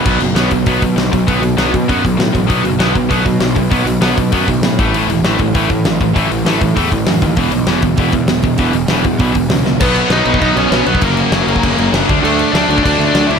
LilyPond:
<<
  \new Staff \with { instrumentName = "Lead electric guitar" } { \time 4/4 \key a \lydian \tempo 4 = 197 r1 | r1 | r1 | r1 |
r1 | r1 | r1 | r1 |
<b b'>4 <dis' dis''>4 <dis' dis''>8 <cis' cis''>4 <b b'>8 | <ais ais'>2. r4 | <a a'>4 <d' d''>4 <d' d''>8. <d' d''>8. <e' e''>8 | }
  \new Staff \with { instrumentName = "Distorted electric guitar" } { \clef bass \time 4/4 \key a \lydian <b, fis b>8 <b, fis>8 <b, fis b>8 <b, fis>8 <b, fis b>8 <b, fis>8 <b, fis>8 <b, fis>8 | <b, fis b>8 <b, fis>8 <b, fis b>8 <b, fis>8 <b, fis b>8 <b, fis>8 <b, fis>8 <b, fis>8 | <b, fis b>8 <b, fis>8 <b, fis b>8 <b, fis>8 <b, fis b>8 <b, fis>8 <b, fis>8 <b, fis>8 | <b, fis b>8 <b, fis>8 <b, fis b>8 <b, fis>8 <b, fis b>8 <b, fis>8 <b, fis>8 <a, e a>8 |
<a, e a>8 <a, e>8 <a, e a>8 <a, e>8 <a, e a>8 <a, e>8 <a, e>8 <a, e>8 | <a, e a>8 <a, e>8 <a, e a>8 <a, e>8 <a, e a>8 <a, e>8 <a, e>8 <a, e>8 | <e, b, e>8 <e, b,>8 <e, b, e>8 <e, b,>8 <e, b, e>8 <e, b,>8 <e, b,>8 <e, b,>8 | <e, b, e>8 <e, b,>8 <e, b, e>8 <e, b,>8 <e, b, e>8 <e, b,>8 <e, b,>8 <e, b,>8 |
<b, fis b>4 <b, fis b>8 <b, fis b>8 <b, fis b>4 <b, fis b>8 <b, fis b>8 | <fis, cis fis>4 <fis, cis fis>8 <fis, cis fis>8 <fis, cis fis>4 <fis, cis fis>8 <d a d'>8 | <d a d'>4 <d a d'>8 <d a d'>8 <d a d'>4 <d a d'>8 <d a d'>8 | }
  \new Staff \with { instrumentName = "Distorted electric guitar" } { \clef bass \time 4/4 \key a \lydian <b, fis b>8 <b, fis>8 <b, fis b>8 <b, fis>8 <b, fis b>8 <b, fis>8 <b, fis>8 <b, fis>8 | <b, fis b>8 <b, fis>8 <b, fis b>8 <b, fis>8 <b, fis b>8 <b, fis>8 <b, fis>8 <b, fis>8 | <b, fis b>8 <b, fis>8 <b, fis b>8 <b, fis>8 <b, fis b>8 <b, fis>8 <b, fis>8 <b, fis>8 | <b, fis b>8 <b, fis>8 <b, fis b>8 <b, fis>8 <b, fis b>8 <b, fis>8 <b, fis>8 <a, e a>8 |
<a, e a>8 <a, e>8 <a, e a>8 <a, e>8 <a, e a>8 <a, e>8 <a, e>8 <a, e>8 | <a, e a>8 <a, e>8 <a, e a>8 <a, e>8 <a, e a>8 <a, e>8 <a, e>8 <a, e>8 | <e, b, e>8 <e, b,>8 <e, b, e>8 <e, b,>8 <e, b, e>8 <e, b,>8 <e, b,>8 <e, b,>8 | <e, b, e>8 <e, b,>8 <e, b, e>8 <e, b,>8 <e, b, e>8 <e, b,>8 <e, b,>8 <e, b,>8 |
<b, fis b>4 <b, fis b>8 <b, fis b>8 <b, fis b>4 <b, fis b>8 <b, fis b>8 | <fis, cis fis>4 <fis, cis fis>8 <fis, cis fis>8 <fis, cis fis>4 <fis, cis fis>8 <d a d'>8 | <d a d'>4 <d a d'>8 <d a d'>8 <d a d'>4 <d a d'>8 <d a d'>8 | }
  \new Staff \with { instrumentName = "Picked electric bass" } { \clef bass \time 4/4 \key a \lydian b,,8 fis,,8 b,,8 b,,8 b,,8 b,8 b,,8 b,,8 | b,,8 b,,8 b,,8 b,8 fis,8 b,,8 a,8 a,,8 | b,,8 fis,,8 b,,8 b,,8 b,,8 b,8 b,,8 b,,8 | b,,8 b,,8 b,,8 b,8 fis,8 b,,8 a,8 a,,8 |
a,,8 e,,8 a,,8 a,,8 a,,8 a,8 a,,8 a,,8 | a,,8 a,,8 a,,8 a,8 e,8 a,,8 fis,8 dis,8 | e,,8 b,,8 e,,8 e,,8 e,,8 e,8 e,,8 e,,8 | e,,8 e,,8 e,,8 e,8 b,,8 e,,8 cis,8 cis,8 |
b,,4 b,,8 b,,8 b,,8 b,,8 b,,8 b,,8 | fis,,4 fis,,8 fis,,8 fis,,8 fis,,8 fis,,8 d,8 | d,4 d,8 d,8 d,8 d,8 d,8 d,8 | }
  \new DrumStaff \with { instrumentName = "Drums" } \drummode { \time 4/4 <cymc bd>8 hho8 <hho sn>8 <hho bd>8 <hho bd>8 <hho bd>8 <hho sn>8 <hho bd>8 | <hho bd>8 hho8 <hho sn>8 <hho bd>8 <hho bd>8 <hho bd>8 <hho sn>8 <hho bd>8 | <hho bd>8 hho8 <hho sn>8 <hho bd>8 <hho bd>8 <hho bd>8 <hho sn>8 <hho bd>8 | <hho bd>8 hho8 <hho sn>8 <hho bd>8 <hho bd>8 <hho bd>8 <hho sn>8 <hho bd>8 |
hho8 hho8 <hho sn>8 <hho bd>8 <hho bd>8 <hho bd>8 <hho sn>8 <hho bd>8 | <hho bd>8 hho8 <hho sn>8 <hho bd>8 <hho bd>8 <hho bd>8 <hho sn>8 <hho bd>8 | <hho bd>8 hho8 <hho sn>8 <hho bd>8 <hho bd>8 <hho bd>8 <hho sn>8 <hho bd>8 | <hho bd>8 hho8 <hho sn>8 <hho bd>8 <hho bd>8 <hho bd>8 <hho sn>8 sn8 |
<cymc bd>8 cymc8 <cymc sn>8 cymc16 bd16 <cymc bd>8 cymc8 <cymc sn>8 cymc16 bd16 | <cymc bd>8 cymc8 <cymc sn>8 cymc16 bd16 <cymc bd>8 cymc8 <cymc sn>8 <cymc bd>8 | cymc8 cymc8 <cymc sn>8 cymc16 bd16 <cymc bd>8 cymc8 <cymc sn>8 cymc8 | }
>>